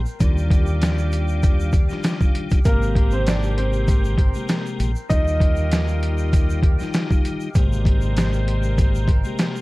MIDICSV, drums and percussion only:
0, 0, Header, 1, 2, 480
1, 0, Start_track
1, 0, Tempo, 612245
1, 160, Time_signature, 4, 2, 24, 8
1, 7537, End_track
2, 0, Start_track
2, 0, Title_t, "Drums"
2, 46, Note_on_c, 9, 82, 52
2, 124, Note_off_c, 9, 82, 0
2, 159, Note_on_c, 9, 82, 74
2, 160, Note_on_c, 9, 36, 124
2, 161, Note_on_c, 9, 42, 91
2, 237, Note_off_c, 9, 82, 0
2, 239, Note_off_c, 9, 36, 0
2, 240, Note_off_c, 9, 42, 0
2, 295, Note_on_c, 9, 82, 55
2, 374, Note_off_c, 9, 82, 0
2, 396, Note_on_c, 9, 36, 102
2, 403, Note_on_c, 9, 42, 77
2, 411, Note_on_c, 9, 82, 46
2, 474, Note_off_c, 9, 36, 0
2, 482, Note_off_c, 9, 42, 0
2, 490, Note_off_c, 9, 82, 0
2, 522, Note_on_c, 9, 82, 54
2, 600, Note_off_c, 9, 82, 0
2, 640, Note_on_c, 9, 42, 91
2, 650, Note_on_c, 9, 38, 124
2, 650, Note_on_c, 9, 82, 69
2, 718, Note_off_c, 9, 42, 0
2, 728, Note_off_c, 9, 82, 0
2, 729, Note_off_c, 9, 38, 0
2, 772, Note_on_c, 9, 82, 49
2, 850, Note_off_c, 9, 82, 0
2, 878, Note_on_c, 9, 82, 49
2, 885, Note_on_c, 9, 42, 68
2, 956, Note_off_c, 9, 82, 0
2, 963, Note_off_c, 9, 42, 0
2, 1006, Note_on_c, 9, 82, 50
2, 1084, Note_off_c, 9, 82, 0
2, 1122, Note_on_c, 9, 82, 70
2, 1123, Note_on_c, 9, 36, 108
2, 1126, Note_on_c, 9, 42, 81
2, 1201, Note_off_c, 9, 36, 0
2, 1201, Note_off_c, 9, 82, 0
2, 1204, Note_off_c, 9, 42, 0
2, 1254, Note_on_c, 9, 82, 63
2, 1332, Note_off_c, 9, 82, 0
2, 1353, Note_on_c, 9, 82, 55
2, 1355, Note_on_c, 9, 36, 100
2, 1361, Note_on_c, 9, 42, 67
2, 1432, Note_off_c, 9, 82, 0
2, 1433, Note_off_c, 9, 36, 0
2, 1440, Note_off_c, 9, 42, 0
2, 1484, Note_on_c, 9, 82, 52
2, 1500, Note_on_c, 9, 38, 34
2, 1562, Note_off_c, 9, 82, 0
2, 1579, Note_off_c, 9, 38, 0
2, 1596, Note_on_c, 9, 82, 66
2, 1599, Note_on_c, 9, 42, 97
2, 1604, Note_on_c, 9, 38, 117
2, 1674, Note_off_c, 9, 82, 0
2, 1677, Note_off_c, 9, 42, 0
2, 1682, Note_off_c, 9, 38, 0
2, 1730, Note_on_c, 9, 36, 93
2, 1732, Note_on_c, 9, 82, 53
2, 1808, Note_off_c, 9, 36, 0
2, 1811, Note_off_c, 9, 82, 0
2, 1843, Note_on_c, 9, 42, 76
2, 1921, Note_off_c, 9, 42, 0
2, 1963, Note_on_c, 9, 82, 51
2, 1973, Note_on_c, 9, 36, 94
2, 1973, Note_on_c, 9, 42, 61
2, 2042, Note_off_c, 9, 82, 0
2, 2051, Note_off_c, 9, 36, 0
2, 2051, Note_off_c, 9, 42, 0
2, 2076, Note_on_c, 9, 82, 73
2, 2080, Note_on_c, 9, 36, 119
2, 2081, Note_on_c, 9, 42, 92
2, 2155, Note_off_c, 9, 82, 0
2, 2158, Note_off_c, 9, 36, 0
2, 2160, Note_off_c, 9, 42, 0
2, 2213, Note_on_c, 9, 82, 57
2, 2292, Note_off_c, 9, 82, 0
2, 2316, Note_on_c, 9, 36, 101
2, 2324, Note_on_c, 9, 42, 79
2, 2394, Note_off_c, 9, 36, 0
2, 2403, Note_off_c, 9, 42, 0
2, 2439, Note_on_c, 9, 82, 51
2, 2517, Note_off_c, 9, 82, 0
2, 2560, Note_on_c, 9, 42, 89
2, 2567, Note_on_c, 9, 82, 74
2, 2570, Note_on_c, 9, 38, 127
2, 2639, Note_off_c, 9, 42, 0
2, 2645, Note_off_c, 9, 82, 0
2, 2649, Note_off_c, 9, 38, 0
2, 2689, Note_on_c, 9, 82, 49
2, 2767, Note_off_c, 9, 82, 0
2, 2805, Note_on_c, 9, 42, 69
2, 2883, Note_off_c, 9, 42, 0
2, 2924, Note_on_c, 9, 82, 50
2, 3002, Note_off_c, 9, 82, 0
2, 3042, Note_on_c, 9, 82, 68
2, 3043, Note_on_c, 9, 36, 107
2, 3045, Note_on_c, 9, 42, 83
2, 3120, Note_off_c, 9, 82, 0
2, 3121, Note_off_c, 9, 36, 0
2, 3123, Note_off_c, 9, 42, 0
2, 3172, Note_on_c, 9, 82, 61
2, 3251, Note_off_c, 9, 82, 0
2, 3275, Note_on_c, 9, 36, 98
2, 3282, Note_on_c, 9, 42, 69
2, 3353, Note_off_c, 9, 36, 0
2, 3360, Note_off_c, 9, 42, 0
2, 3405, Note_on_c, 9, 82, 52
2, 3484, Note_off_c, 9, 82, 0
2, 3516, Note_on_c, 9, 82, 65
2, 3520, Note_on_c, 9, 42, 96
2, 3525, Note_on_c, 9, 38, 116
2, 3595, Note_off_c, 9, 82, 0
2, 3598, Note_off_c, 9, 42, 0
2, 3603, Note_off_c, 9, 38, 0
2, 3655, Note_on_c, 9, 82, 51
2, 3733, Note_off_c, 9, 82, 0
2, 3762, Note_on_c, 9, 42, 79
2, 3763, Note_on_c, 9, 82, 50
2, 3841, Note_off_c, 9, 42, 0
2, 3841, Note_off_c, 9, 82, 0
2, 3885, Note_on_c, 9, 82, 53
2, 3963, Note_off_c, 9, 82, 0
2, 4000, Note_on_c, 9, 36, 122
2, 4000, Note_on_c, 9, 82, 77
2, 4002, Note_on_c, 9, 42, 87
2, 4078, Note_off_c, 9, 82, 0
2, 4079, Note_off_c, 9, 36, 0
2, 4080, Note_off_c, 9, 42, 0
2, 4136, Note_on_c, 9, 82, 55
2, 4214, Note_off_c, 9, 82, 0
2, 4236, Note_on_c, 9, 36, 99
2, 4245, Note_on_c, 9, 42, 79
2, 4315, Note_off_c, 9, 36, 0
2, 4323, Note_off_c, 9, 42, 0
2, 4360, Note_on_c, 9, 82, 52
2, 4439, Note_off_c, 9, 82, 0
2, 4481, Note_on_c, 9, 42, 90
2, 4488, Note_on_c, 9, 82, 73
2, 4491, Note_on_c, 9, 38, 124
2, 4559, Note_off_c, 9, 42, 0
2, 4566, Note_off_c, 9, 82, 0
2, 4569, Note_off_c, 9, 38, 0
2, 4611, Note_on_c, 9, 82, 50
2, 4689, Note_off_c, 9, 82, 0
2, 4726, Note_on_c, 9, 42, 69
2, 4804, Note_off_c, 9, 42, 0
2, 4846, Note_on_c, 9, 82, 51
2, 4925, Note_off_c, 9, 82, 0
2, 4963, Note_on_c, 9, 36, 108
2, 4965, Note_on_c, 9, 42, 81
2, 4966, Note_on_c, 9, 82, 68
2, 5042, Note_off_c, 9, 36, 0
2, 5044, Note_off_c, 9, 42, 0
2, 5044, Note_off_c, 9, 82, 0
2, 5097, Note_on_c, 9, 82, 64
2, 5175, Note_off_c, 9, 82, 0
2, 5195, Note_on_c, 9, 36, 102
2, 5201, Note_on_c, 9, 42, 67
2, 5273, Note_off_c, 9, 36, 0
2, 5280, Note_off_c, 9, 42, 0
2, 5327, Note_on_c, 9, 82, 51
2, 5340, Note_on_c, 9, 38, 35
2, 5405, Note_off_c, 9, 82, 0
2, 5419, Note_off_c, 9, 38, 0
2, 5439, Note_on_c, 9, 82, 63
2, 5440, Note_on_c, 9, 42, 93
2, 5445, Note_on_c, 9, 38, 113
2, 5517, Note_off_c, 9, 82, 0
2, 5518, Note_off_c, 9, 42, 0
2, 5523, Note_off_c, 9, 38, 0
2, 5570, Note_on_c, 9, 36, 96
2, 5575, Note_on_c, 9, 82, 51
2, 5649, Note_off_c, 9, 36, 0
2, 5653, Note_off_c, 9, 82, 0
2, 5684, Note_on_c, 9, 42, 74
2, 5685, Note_on_c, 9, 82, 51
2, 5762, Note_off_c, 9, 42, 0
2, 5763, Note_off_c, 9, 82, 0
2, 5804, Note_on_c, 9, 82, 50
2, 5883, Note_off_c, 9, 82, 0
2, 5918, Note_on_c, 9, 82, 74
2, 5921, Note_on_c, 9, 36, 121
2, 5923, Note_on_c, 9, 42, 89
2, 5997, Note_off_c, 9, 82, 0
2, 5999, Note_off_c, 9, 36, 0
2, 6001, Note_off_c, 9, 42, 0
2, 6056, Note_on_c, 9, 82, 56
2, 6135, Note_off_c, 9, 82, 0
2, 6157, Note_on_c, 9, 36, 102
2, 6166, Note_on_c, 9, 42, 76
2, 6235, Note_off_c, 9, 36, 0
2, 6245, Note_off_c, 9, 42, 0
2, 6282, Note_on_c, 9, 82, 52
2, 6360, Note_off_c, 9, 82, 0
2, 6403, Note_on_c, 9, 42, 87
2, 6408, Note_on_c, 9, 82, 70
2, 6413, Note_on_c, 9, 38, 126
2, 6481, Note_off_c, 9, 42, 0
2, 6487, Note_off_c, 9, 82, 0
2, 6491, Note_off_c, 9, 38, 0
2, 6532, Note_on_c, 9, 82, 49
2, 6611, Note_off_c, 9, 82, 0
2, 6647, Note_on_c, 9, 42, 68
2, 6725, Note_off_c, 9, 42, 0
2, 6767, Note_on_c, 9, 82, 49
2, 6845, Note_off_c, 9, 82, 0
2, 6884, Note_on_c, 9, 36, 106
2, 6884, Note_on_c, 9, 82, 69
2, 6887, Note_on_c, 9, 42, 82
2, 6963, Note_off_c, 9, 36, 0
2, 6963, Note_off_c, 9, 82, 0
2, 6965, Note_off_c, 9, 42, 0
2, 7016, Note_on_c, 9, 82, 63
2, 7094, Note_off_c, 9, 82, 0
2, 7116, Note_on_c, 9, 36, 100
2, 7123, Note_on_c, 9, 42, 65
2, 7194, Note_off_c, 9, 36, 0
2, 7201, Note_off_c, 9, 42, 0
2, 7246, Note_on_c, 9, 82, 51
2, 7324, Note_off_c, 9, 82, 0
2, 7358, Note_on_c, 9, 82, 66
2, 7360, Note_on_c, 9, 42, 96
2, 7365, Note_on_c, 9, 38, 117
2, 7436, Note_off_c, 9, 82, 0
2, 7438, Note_off_c, 9, 42, 0
2, 7443, Note_off_c, 9, 38, 0
2, 7495, Note_on_c, 9, 82, 53
2, 7537, Note_off_c, 9, 82, 0
2, 7537, End_track
0, 0, End_of_file